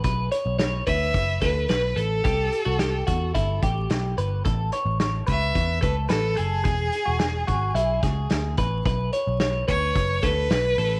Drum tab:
HH |xxxxxxxx|xxxxxxxx|xxxxxxxx|xxxxxxxx|
SD |--o--oo-|--o---o-|--o---o-|--o--oo-|
BD |o--ooo--|o--ooo--|o--ooo--|o--o-o-o|

HH |xxxxxxxo|
SD |--o--oo-|
BD |o--ooo--|